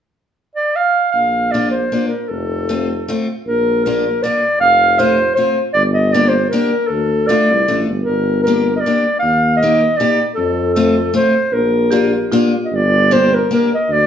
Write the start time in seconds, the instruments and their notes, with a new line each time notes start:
0.56 clarinet D5
0.76 clarinet F5
1.12 tuba A#1, clarinet F5
1.51 steel-string acoustic guitar A#3 D4 F4, clarinet D5
1.71 clarinet C5
1.92 steel-string acoustic guitar A#3 D4 F4
2.08 clarinet A#4
2.29 tuba F1, clarinet A4
2.69 steel-string acoustic guitar A3 C4 F4
3.08 steel-string acoustic guitar A3 C4 F4
3.46 tuba A#1, clarinet A#4
3.85 steel-string acoustic guitar A#3 D4 F4, clarinet A#4
4.23 steel-string acoustic guitar A#3 D4 F4, clarinet D5
4.60 tuba F1, clarinet F5
4.99 steel-string acoustic guitar A3 C4 F4, clarinet C5
5.35 steel-string acoustic guitar A3 C4 F4, clarinet C5
5.73 tuba G1, clarinet D5
5.94 clarinet D#5
6.13 steel-string acoustic guitar A#3 D4 G4, clarinet D5
6.29 clarinet C5
6.50 steel-string acoustic guitar A#3 D4, clarinet A#4
6.54 steel-string acoustic guitar G4
6.87 tuba D2, clarinet A4
7.27 steel-string acoustic guitar A3 D4 F4, clarinet D5
7.50 tuba C2
7.68 tuba A1, steel-string acoustic guitar A3 D4 F4
7.88 tuba G1
8.03 clarinet A#4
8.07 tuba G1
8.43 clarinet A#4
8.47 steel-string acoustic guitar A#3 D4 G4
8.76 clarinet D#5
8.80 clarinet D5
8.86 steel-string acoustic guitar A#3 D4 G4
9.19 tuba D#2, clarinet F5
9.57 clarinet D#5
9.63 steel-string acoustic guitar A#3 D#4 G4
9.97 steel-string acoustic guitar A#3, clarinet D5
10.01 steel-string acoustic guitar D#4 G4
10.35 tuba F2, clarinet A4
10.74 steel-string acoustic guitar A3 C4 F4, clarinet A4
11.14 steel-string acoustic guitar A3 C4 F4, clarinet C5
11.53 tuba A#1, clarinet A#4
11.91 steel-string acoustic guitar A#3 D4 F4, marimba G4
12.32 steel-string acoustic guitar A#3 D4 F4, marimba F4
12.65 clarinet D#5
12.72 tuba G1, clarinet D5
13.11 steel-string acoustic guitar A#3 D4 G4, clarinet C5
13.34 clarinet A#4
13.51 steel-string acoustic guitar A#3 D4 G4, clarinet A#4
13.74 clarinet D#5
13.89 tuba D2, clarinet D5